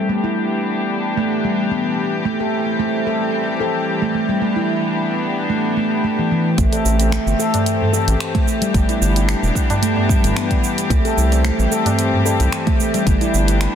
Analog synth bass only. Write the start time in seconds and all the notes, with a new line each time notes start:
6.58 A1
6.85 A1
7.26 G1
8.08 A1
8.74 G1
9.01 G1
9.43 E1
10.24 G1
10.90 C2
11.17 C2
11.59 A1
12.40 C2
13.07 G1
13.34 G1